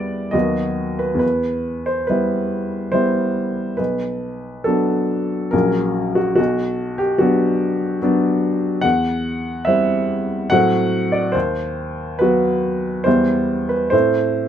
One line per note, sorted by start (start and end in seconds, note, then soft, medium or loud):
0.00 0.36 E2 soft
0.00 0.30 G3 soft
0.00 0.30 B3 soft
0.00 0.30 B4 soft
0.00 0.33 D5 medium
0.00 0.37 E5 soft
0.31 1.19 D#2 soft
0.31 1.18 F#3 soft
0.31 1.18 B3 soft
0.31 1.18 F#4 soft
0.31 0.99 D#5 medium
0.99 1.18 B4 soft
1.14 2.02 E2 soft
1.19 1.86 B4 soft
1.86 2.08 C5 soft
2.07 2.89 G3 soft
2.07 2.89 B3 soft
2.07 2.89 E4 soft
2.07 2.92 B4 soft
2.92 3.75 G3 soft
2.92 3.75 B3 soft
2.92 3.75 E4 soft
2.92 3.78 C5 medium
3.77 4.63 B1 soft
3.77 4.65 B4 soft
4.64 5.49 F#3 soft
4.64 5.49 B3 soft
4.64 5.50 D4 soft
4.64 5.52 A4 medium
5.51 6.35 A#1 soft
5.51 6.34 F#3 soft
5.51 6.34 C#4 soft
5.51 6.16 A#4 medium
6.15 6.34 F#4 medium
6.36 7.18 B1 soft
6.36 6.99 F#4 medium
6.98 7.19 G4 medium
7.18 7.98 F#3 soft
7.18 7.98 B3 soft
7.18 7.98 D4 soft
7.18 8.01 F#4 medium
8.02 8.80 F#3 soft
8.02 8.80 B3 soft
8.02 8.80 D4 soft
8.81 9.64 E2 soft
8.81 9.66 F#5 medium
9.65 10.47 G3 soft
9.65 10.47 C4 soft
9.65 10.48 E4 soft
9.65 10.50 E5 medium
10.50 11.32 A2 medium
10.50 11.30 F#3 soft
10.50 11.31 C4 soft
10.50 11.31 F#4 soft
10.50 11.13 F#5 medium
11.12 11.34 D5 medium
11.32 12.17 D#2 soft
11.32 12.19 C5 medium
12.19 13.02 F#3 soft
12.19 13.02 B3 soft
12.19 13.03 F#4 soft
12.19 13.05 B4 medium
13.04 13.90 E2 soft
13.04 13.89 G3 soft
13.04 13.89 B3 soft
13.04 13.89 E4 soft
13.04 13.70 C5 medium
13.69 13.92 B4 medium
13.90 14.48 A2 soft
13.90 14.48 A3 soft
13.90 14.48 C4 soft
13.90 14.48 E4 soft
13.90 14.48 C5 medium